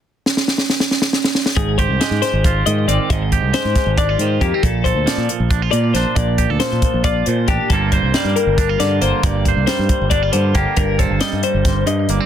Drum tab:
HH |--------------|x-x-x-x-x-x-x-|x-x-x-x-x-x-x-|x-x-x-x-x-x-x-|
SD |--oooooooooooo|----o-o-------|----o-o-------|----o-------o-|
BD |--------------|o-o-----o-----|o-o---o-o---o-|o-o-----o-----|

HH |x-x-x-x-x-x-x-|x-x-x-x-x-x-x-|x-x-x-x-x-x-x-|x-x-x-x-x-x-x-|
SD |----o---------|----o-----o---|----o---------|----o---o-----|
BD |o-o---o-o---o-|o-o-----o-----|o-o---o-o---o-|o-o-----o-----|